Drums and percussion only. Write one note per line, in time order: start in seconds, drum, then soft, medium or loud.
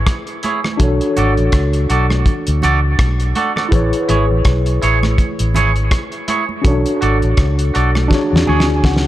0.07 kick loud
0.07 cross-stick loud
0.07 closed hi-hat medium
0.07 high conga soft
0.27 closed hi-hat soft
0.43 closed hi-hat medium
0.43 high conga medium
0.64 cross-stick medium
0.64 high conga medium
0.80 kick loud
0.80 closed hi-hat loud
0.80 low conga medium
1.01 closed hi-hat medium
1.16 closed hi-hat medium
1.16 low conga medium
1.37 closed hi-hat soft
1.52 kick loud
1.52 cross-stick loud
1.52 closed hi-hat medium
1.73 closed hi-hat medium
1.90 closed hi-hat medium
2.10 cross-stick medium
2.10 high conga medium
2.26 kick loud
2.26 closed hi-hat medium
2.26 high conga soft
2.26 low conga medium
2.47 closed hi-hat medium
2.62 closed hi-hat medium
2.62 low conga medium
2.99 kick loud
2.99 cross-stick loud
2.99 closed hi-hat medium
2.99 high conga soft
3.20 closed hi-hat soft
3.35 closed hi-hat medium
3.35 high conga medium
3.56 cross-stick medium
3.56 high conga medium
3.72 kick loud
3.72 closed hi-hat loud
3.72 low conga medium
3.93 closed hi-hat medium
4.09 closed hi-hat medium
4.09 low conga medium
4.45 kick loud
4.45 cross-stick loud
4.45 closed hi-hat medium
4.66 closed hi-hat soft
4.82 closed hi-hat medium
5.03 cross-stick medium
5.03 high conga medium
5.18 kick medium
5.18 closed hi-hat medium
5.18 high conga soft
5.18 low conga medium
5.39 closed hi-hat medium
5.54 closed hi-hat medium
5.54 low conga medium
5.76 closed hi-hat soft
5.91 kick loud
5.91 cross-stick loud
5.91 closed hi-hat medium
5.91 high conga soft
6.12 closed hi-hat soft
6.28 closed hi-hat medium
6.28 high conga medium
6.49 high conga soft
6.65 kick loud
6.65 closed hi-hat loud
6.65 low conga medium
6.86 closed hi-hat medium
7.02 closed hi-hat medium
7.22 closed hi-hat soft
7.37 kick loud
7.37 cross-stick medium
7.37 closed hi-hat medium
7.59 closed hi-hat medium
7.75 closed hi-hat medium
7.95 cross-stick medium
7.95 high conga medium
8.11 kick medium
8.11 snare medium
8.11 high conga soft
8.11 low conga medium
8.36 snare medium
8.47 high conga soft
8.47 low conga medium
8.60 snare medium
8.84 kick loud
8.84 snare medium
8.84 high conga soft
8.96 snare medium